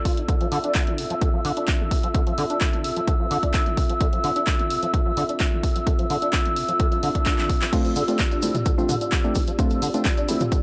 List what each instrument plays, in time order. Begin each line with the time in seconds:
Already playing: analog synth pad C4 F4 A4 D5, ambient pad E6
0.05 acid bass F4, kick, open hi-hat
0.17 acid bass D4, closed hi-hat
0.28 acid bass D3, analog synth pad E5, kick, closed hi-hat
0.41 acid bass F3, closed hi-hat
0.52 acid bass D3, open hi-hat
0.64 acid bass D4, closed hi-hat
0.75 kick, clap, closed hi-hat
0.87 acid bass D3, closed hi-hat
0.98 acid bass C3, open hi-hat
1.10 acid bass F3, closed hi-hat
1.21 acid bass D3, kick, closed hi-hat
1.34 acid bass F3
1.45 acid bass D3, open hi-hat
1.57 acid bass D4, closed hi-hat
1.68 kick, clap, closed hi-hat
1.80 acid bass D3
1.91 acid bass C3, kick, open hi-hat
2.03 acid bass F3, closed hi-hat
2.14 acid bass D3, kick, closed hi-hat
2.27 acid bass F3, closed hi-hat
2.38 acid bass D3, open hi-hat
2.50 acid bass D4, closed hi-hat
2.61 kick, clap, closed hi-hat
2.73 acid bass D3, closed hi-hat
2.84 acid bass C3, open hi-hat
2.97 acid bass F3, closed hi-hat
3.08 acid bass D3, kick, closed hi-hat
3.20 acid bass F3
3.31 acid bass D3, open hi-hat
3.43 acid bass D4, kick, closed hi-hat
3.54 kick, clap, closed hi-hat
3.66 acid bass D3, closed hi-hat
3.77 acid bass C3, kick, open hi-hat
3.90 acid bass F3, closed hi-hat
4.01 acid bass D3, kick, closed hi-hat
4.13 acid bass F3, closed hi-hat
4.24 acid bass D3, open hi-hat
4.36 acid bass D4, closed hi-hat
4.47 kick, clap, closed hi-hat
4.59 acid bass D3, closed hi-hat
4.70 acid bass C3, open hi-hat
4.83 acid bass F3, closed hi-hat
4.94 acid bass D3, kick, closed hi-hat
5.06 acid bass F3
5.17 acid bass D3, open hi-hat
5.29 acid bass D4, closed hi-hat
5.40 kick, clap, closed hi-hat
5.52 acid bass D3
5.63 acid bass C3, kick, open hi-hat
5.76 acid bass F3, closed hi-hat
5.87 acid bass D3, kick, closed hi-hat
5.99 acid bass F3, closed hi-hat
6.10 acid bass D3, open hi-hat
6.22 acid bass D4, closed hi-hat
6.33 kick, clap, closed hi-hat
6.45 acid bass D3, closed hi-hat
6.56 acid bass C3, open hi-hat
6.69 acid bass F3, closed hi-hat
6.80 acid bass D3, kick, closed hi-hat, swell
6.92 acid bass F3, closed hi-hat
7.03 acid bass D3, open hi-hat
7.15 acid bass D4, kick, closed hi-hat
7.26 kick, clap, closed hi-hat
7.38 acid bass D3, clap
7.49 acid bass C3, kick, open hi-hat
7.62 acid bass F3, clap, closed hi-hat
7.73 acid bass D3, synth stab A3 C4 D4 F4, analog synth pad G4 D5, kick, closed hi-hat, crash, cabasa
7.85 acid bass F3, closed hi-hat, cabasa
7.96 acid bass D3, open hi-hat, cabasa
8.08 synth stab A3 C4 D4 F4, acid bass D4, closed hi-hat, cabasa
8.19 kick, clap, closed hi-hat, cabasa
8.31 acid bass D4, closed hi-hat, cabasa
8.42 acid bass C3, synth stab A3 C4 D4 E4, open hi-hat, cabasa
8.55 acid bass F3, closed hi-hat, mid tom, cabasa
8.66 acid bass D3, kick, closed hi-hat, cabasa
8.78 acid bass F3, synth stab A3 C4 D4 F4, cabasa
8.89 acid bass D3, open hi-hat, mid tom, cabasa
9.01 acid bass D4, closed hi-hat, cabasa
9.12 kick, clap, closed hi-hat, cabasa
9.24 synth stab A3 C4 D4 G4, acid bass D4, cabasa
9.35 acid bass C3, kick, open hi-hat, cabasa
9.47 acid bass F3, closed hi-hat, cabasa
9.59 acid bass D3, synth stab A3 C4 D4 F4, kick, closed hi-hat, cabasa
9.70 acid bass F3, closed hi-hat, cabasa
9.82 acid bass D3, open hi-hat, cabasa
9.94 synth stab A3 C4 D4 F4, acid bass D4, closed hi-hat, cabasa
10.05 kick, clap, closed hi-hat, cabasa
10.17 acid bass D4, closed hi-hat, cabasa
10.29 acid bass C3, synth stab A3 C4 D4 E4, open hi-hat, cabasa
10.40 acid bass F3, closed hi-hat, mid tom, cabasa
10.52 acid bass D3, kick, closed hi-hat, cabasa